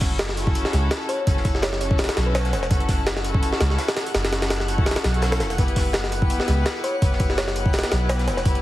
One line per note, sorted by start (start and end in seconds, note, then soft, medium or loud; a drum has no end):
0.00 0.63 F#1 loud
0.00 0.35 C#4 medium
0.00 0.35 E4 medium
0.00 0.35 F#4 medium
0.00 0.35 A4 medium
0.00 8.62 F#5 medium
0.00 8.62 F#6 medium
0.00 kick loud
0.00 snare medium
0.00 closed hi-hat medium
0.00 open hi-hat medium
0.19 snare loud
0.19 closed hi-hat medium
0.19 open hi-hat medium
0.29 snare medium
0.29 snare soft
0.37 1.25 C#4 loud
0.37 1.25 E4 medium
0.37 1.25 F#4 medium
0.37 1.25 A4 loud
0.37 closed hi-hat medium
0.37 open hi-hat medium
0.47 kick loud
0.55 closed hi-hat medium
0.55 open hi-hat medium
0.65 snare soft
0.65 snare medium
0.73 0.89 C#2 loud
0.73 snare soft
0.73 closed hi-hat medium
0.73 open hi-hat medium
0.91 snare loud
0.91 closed hi-hat loud
0.91 open hi-hat medium
1.01 closed hi-hat soft
1.09 1.31 C#5 medium
1.09 closed hi-hat medium
1.09 open hi-hat medium
1.27 2.07 F#1 loud
1.27 1.79 C#4 medium
1.27 1.79 E4 medium
1.27 1.79 F#4 medium
1.27 1.79 A4 medium
1.27 kick loud
1.27 closed hi-hat medium
1.27 open hi-hat medium
1.37 snare soft
1.45 kick loud
1.45 open hi-hat medium
1.55 snare soft
1.62 1.69 C#5 medium
1.62 snare loud
1.62 closed hi-hat medium
1.62 open hi-hat medium
1.73 1.78 C#5 medium
1.73 snare medium
1.73 closed hi-hat soft
1.81 2.69 C#4 loud
1.81 2.69 E4 medium
1.81 2.69 F#4 medium
1.81 2.69 A4 loud
1.81 1.87 C#5 medium
1.81 closed hi-hat medium
1.81 open hi-hat medium
1.91 1.96 C#5 medium
1.91 kick loud
1.98 snare medium
1.98 closed hi-hat medium
1.98 open hi-hat medium
2.04 snare medium
2.04 open hi-hat medium
2.09 snare loud
2.09 open hi-hat medium
2.17 2.54 B1 medium
2.17 snare loud
2.17 closed hi-hat medium
2.17 open hi-hat medium
2.26 2.62 B4 medium
2.34 snare loud
2.34 closed hi-hat medium
2.34 open hi-hat medium
2.44 snare medium
2.44 closed hi-hat soft
2.53 2.69 E1 medium
2.53 snare medium
2.53 closed hi-hat medium
2.53 open hi-hat medium
2.63 snare soft
2.71 3.51 F#1 loud
2.71 3.23 C#4 medium
2.71 3.23 E4 medium
2.71 3.23 F#4 medium
2.71 3.23 A4 medium
2.71 kick loud
2.71 closed hi-hat loud
2.71 open hi-hat medium
2.80 closed hi-hat soft
2.88 kick medium
2.88 snare medium
2.88 closed hi-hat medium
2.88 open hi-hat medium
3.06 snare loud
3.06 closed hi-hat loud
3.06 open hi-hat medium
3.16 snare soft
3.16 snare medium
3.24 4.13 C#4 loud
3.24 4.12 E4 medium
3.24 4.12 F#4 medium
3.24 4.12 A4 loud
3.24 closed hi-hat medium
3.24 open hi-hat medium
3.35 kick loud
3.43 closed hi-hat medium
3.43 open hi-hat medium
3.52 snare soft
3.52 snare medium
3.60 3.77 C#2 loud
3.60 snare loud
3.60 closed hi-hat medium
3.60 open hi-hat medium
3.70 snare medium
3.78 snare loud
3.78 closed hi-hat medium
3.78 open hi-hat medium
3.88 snare loud
3.88 open hi-hat medium
3.96 snare loud
3.96 closed hi-hat medium
3.96 open hi-hat medium
4.06 open hi-hat medium
4.14 4.95 F#1 loud
4.14 4.67 C#4 medium
4.14 4.67 E4 medium
4.14 4.67 F#4 medium
4.14 4.67 A4 medium
4.14 snare loud
4.14 closed hi-hat loud
4.14 open hi-hat medium
4.24 snare medium
4.24 snare loud
4.24 open hi-hat medium
4.32 snare loud
4.32 open hi-hat medium
4.42 snare loud
4.42 open hi-hat medium
4.50 snare loud
4.50 closed hi-hat loud
4.50 open hi-hat medium
4.59 snare medium
4.59 closed hi-hat soft
4.68 5.12 C#4 loud
4.68 5.12 E4 medium
4.68 5.12 F#4 medium
4.68 5.12 A4 loud
4.68 closed hi-hat medium
4.68 open hi-hat medium
4.78 kick loud
4.86 snare medium
4.86 closed hi-hat medium
4.86 open hi-hat medium
4.91 snare medium
4.91 open hi-hat medium
4.96 snare loud
4.96 open hi-hat medium
5.04 5.42 B1 medium
5.04 snare loud
5.04 closed hi-hat medium
5.04 open hi-hat medium
5.14 5.56 C#4 loud
5.14 5.56 E4 loud
5.14 5.56 F#4 loud
5.14 5.56 A4 loud
5.14 closed hi-hat soft
5.22 snare loud
5.22 snare soft
5.22 closed hi-hat medium
5.22 open hi-hat medium
5.32 snare loud
5.32 open hi-hat medium
5.40 5.57 E1 medium
5.40 snare loud
5.40 closed hi-hat medium
5.40 open hi-hat medium
5.50 snare soft
5.50 closed hi-hat soft
5.50 open hi-hat medium
5.58 6.38 F#1 loud
5.58 6.10 B3 medium
5.58 6.10 E4 medium
5.58 6.10 G4 medium
5.58 6.10 B4 medium
5.58 kick loud
5.58 closed hi-hat medium
5.58 open hi-hat medium
5.68 closed hi-hat soft
5.76 kick loud
5.76 snare medium
5.76 closed hi-hat medium
5.76 open hi-hat medium
5.93 snare loud
5.93 closed hi-hat loud
5.93 open hi-hat medium
6.04 snare medium
6.04 snare soft
6.12 7.00 B3 loud
6.12 7.00 E4 medium
6.12 7.00 G4 medium
6.12 7.00 B4 loud
6.12 closed hi-hat medium
6.12 open hi-hat medium
6.22 kick loud
6.30 closed hi-hat medium
6.30 open hi-hat medium
6.40 snare medium
6.48 6.64 C#2 loud
6.48 snare soft
6.48 closed hi-hat medium
6.48 open hi-hat medium
6.66 snare loud
6.66 closed hi-hat medium
6.66 open hi-hat medium
6.76 closed hi-hat soft
6.84 7.06 C#5 medium
6.84 closed hi-hat medium
6.84 open hi-hat medium
7.02 7.82 F#1 loud
7.02 7.54 B3 medium
7.02 7.54 E4 medium
7.02 7.54 G4 medium
7.02 7.54 B4 medium
7.02 kick loud
7.02 closed hi-hat medium
7.02 open hi-hat medium
7.12 snare soft
7.20 kick loud
7.20 open hi-hat medium
7.30 snare soft
7.38 7.44 C#5 medium
7.38 snare loud
7.38 closed hi-hat medium
7.38 open hi-hat medium
7.48 7.53 C#5 medium
7.48 snare medium
7.48 closed hi-hat soft
7.55 8.43 B3 loud
7.55 8.43 E4 medium
7.55 8.43 G4 medium
7.55 8.44 B4 loud
7.55 closed hi-hat medium
7.55 open hi-hat medium
7.66 kick loud
7.73 snare medium
7.73 closed hi-hat medium
7.73 open hi-hat medium
7.79 snare medium
7.79 open hi-hat medium
7.83 snare loud
7.83 open hi-hat medium
7.91 8.29 B1 medium
7.91 snare loud
7.91 closed hi-hat medium
7.91 open hi-hat medium
8.09 snare loud
8.09 closed hi-hat medium
8.09 open hi-hat medium
8.19 snare medium
8.19 closed hi-hat soft
8.27 8.44 E1 medium
8.27 snare medium
8.27 closed hi-hat medium
8.27 open hi-hat medium
8.37 snare soft
8.45 8.62 F#1 loud
8.45 8.62 B3 medium
8.45 8.62 E4 medium
8.45 8.62 G4 medium
8.45 8.62 B4 medium
8.45 kick loud
8.45 closed hi-hat medium
8.45 open hi-hat medium
8.55 closed hi-hat soft